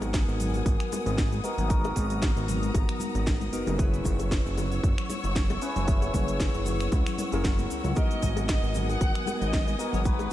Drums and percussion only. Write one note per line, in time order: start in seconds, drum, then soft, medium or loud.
0.02 closed hi-hat medium
0.02 high bongo medium
0.02 shaker soft
0.14 kick loud
0.14 snare loud
0.14 closed hi-hat medium
0.14 shaker soft
0.14 shaker medium
0.29 shaker soft
0.40 open hi-hat loud
0.40 low conga medium
0.40 shaker medium
0.54 open hi-hat medium
0.54 high bongo soft
0.54 shaker soft
0.66 kick loud
0.66 closed hi-hat medium
0.66 shaker soft
0.66 shaker medium
0.80 finger snap medium
0.80 closed hi-hat soft
0.92 open hi-hat loud
0.92 high bongo medium
0.92 high conga medium
0.92 shaker medium
1.06 closed hi-hat soft
1.06 shaker soft
1.18 kick loud
1.18 snare loud
1.18 closed hi-hat medium
1.18 shaker soft
1.18 shaker medium
1.32 closed hi-hat soft
1.32 high conga medium
1.32 shaker soft
1.44 open hi-hat loud
1.44 high bongo medium
1.44 shaker medium
1.44 shaker loud
1.58 closed hi-hat medium
1.58 high conga medium
1.58 shaker soft
1.70 kick loud
1.70 closed hi-hat medium
1.70 shaker medium
1.70 shaker soft
1.84 closed hi-hat soft
1.84 high bongo medium
1.84 shaker soft
1.96 kick medium
1.96 open hi-hat loud
1.96 shaker medium
1.96 shaker loud
2.10 closed hi-hat medium
2.10 shaker soft
2.22 kick loud
2.22 snare loud
2.22 closed hi-hat medium
2.22 shaker soft
2.22 shaker medium
2.37 closed hi-hat soft
2.37 high bongo soft
2.37 shaker soft
2.48 open hi-hat loud
2.48 low conga medium
2.48 shaker medium
2.48 shaker loud
2.63 closed hi-hat medium
2.63 shaker soft
2.74 kick loud
2.74 closed hi-hat medium
2.74 high bongo medium
2.74 shaker medium
2.74 shaker soft
2.89 finger snap medium
2.89 closed hi-hat soft
3.00 open hi-hat loud
3.00 high conga medium
3.00 shaker medium
3.14 closed hi-hat medium
3.14 shaker soft
3.27 kick loud
3.27 snare loud
3.27 closed hi-hat medium
3.27 high bongo medium
3.27 shaker medium
3.27 shaker soft
3.40 closed hi-hat soft
3.40 high conga medium
3.40 shaker soft
3.53 open hi-hat loud
3.53 shaker medium
3.67 closed hi-hat medium
3.67 high bongo medium
3.67 high conga medium
3.67 shaker soft
3.79 kick loud
3.79 closed hi-hat medium
3.79 shaker medium
3.79 shaker soft
3.94 closed hi-hat soft
3.94 shaker soft
4.04 kick medium
4.04 open hi-hat loud
4.04 high conga medium
4.04 shaker loud
4.04 shaker medium
4.18 closed hi-hat medium
4.18 high bongo medium
4.18 shaker soft
4.20 shaker soft
4.31 kick loud
4.31 snare loud
4.31 closed hi-hat medium
4.31 shaker medium
4.31 shaker soft
4.47 shaker soft
4.58 open hi-hat loud
4.58 high bongo medium
4.58 low conga medium
4.58 shaker medium
4.72 open hi-hat medium
4.72 shaker soft
4.84 kick loud
4.84 closed hi-hat medium
4.84 shaker soft
4.98 finger snap medium
4.98 closed hi-hat soft
5.09 open hi-hat loud
5.09 high bongo soft
5.09 high conga medium
5.09 shaker medium
5.23 closed hi-hat medium
5.23 shaker soft
5.36 kick loud
5.36 snare loud
5.36 closed hi-hat medium
5.36 shaker medium
5.36 shaker soft
5.49 closed hi-hat soft
5.49 high bongo medium
5.49 high conga medium
5.49 shaker soft
5.62 open hi-hat medium
5.62 shaker medium
5.76 closed hi-hat medium
5.76 high conga medium
5.76 shaker soft
5.88 kick loud
5.88 closed hi-hat medium
5.88 shaker soft
5.88 shaker medium
6.02 closed hi-hat soft
6.02 high bongo medium
6.02 shaker soft
6.14 kick medium
6.14 open hi-hat loud
6.14 high conga medium
6.14 shaker medium
6.28 closed hi-hat medium
6.28 shaker soft
6.39 kick loud
6.39 snare loud
6.39 closed hi-hat medium
6.39 high bongo medium
6.39 shaker medium
6.39 shaker soft
6.54 closed hi-hat soft
6.54 shaker soft
6.65 open hi-hat loud
6.65 low conga medium
6.65 shaker medium
6.79 finger snap medium
6.79 open hi-hat medium
6.79 shaker soft
6.81 shaker soft
6.92 kick loud
6.92 closed hi-hat medium
6.92 high bongo soft
6.92 shaker soft
6.92 shaker medium
7.06 finger snap medium
7.06 open hi-hat medium
7.06 shaker soft
7.18 open hi-hat loud
7.18 high conga medium
7.18 shaker medium
7.32 closed hi-hat medium
7.32 high bongo medium
7.32 shaker soft
7.44 kick loud
7.44 snare loud
7.44 closed hi-hat medium
7.44 shaker medium
7.44 shaker soft
7.58 closed hi-hat soft
7.58 high conga medium
7.58 shaker soft
7.70 open hi-hat loud
7.70 shaker medium
7.84 closed hi-hat medium
7.84 high bongo medium
7.84 high conga medium
7.84 shaker soft
7.95 kick loud
7.95 closed hi-hat medium
7.95 high bongo medium
7.95 shaker medium
7.97 shaker soft
8.11 closed hi-hat soft
8.11 shaker soft
8.22 kick medium
8.22 open hi-hat loud
8.22 high conga medium
8.22 shaker loud
8.22 shaker medium
8.37 closed hi-hat medium
8.37 high bongo medium
8.37 shaker soft
8.49 kick loud
8.49 snare loud
8.49 closed hi-hat medium
8.49 shaker soft
8.64 shaker soft
8.74 open hi-hat loud
8.74 low conga medium
8.74 shaker loud
8.74 shaker medium
8.89 open hi-hat medium
8.89 high bongo medium
8.89 shaker soft
9.01 kick loud
9.01 closed hi-hat medium
9.01 shaker soft
9.15 finger snap medium
9.15 closed hi-hat soft
9.26 open hi-hat loud
9.26 high bongo medium
9.26 high conga medium
9.26 shaker medium
9.42 closed hi-hat medium
9.42 shaker soft
9.53 kick loud
9.53 snare loud
9.53 closed hi-hat medium
9.53 shaker medium
9.53 shaker soft
9.67 closed hi-hat soft
9.67 high conga medium
9.67 shaker soft
9.79 open hi-hat loud
9.79 high bongo medium
9.79 shaker medium
9.93 closed hi-hat medium
9.93 high conga medium
9.93 shaker soft
10.04 kick loud
10.04 closed hi-hat medium
10.04 shaker medium
10.06 shaker soft
10.19 closed hi-hat soft
10.19 high bongo medium
10.19 shaker soft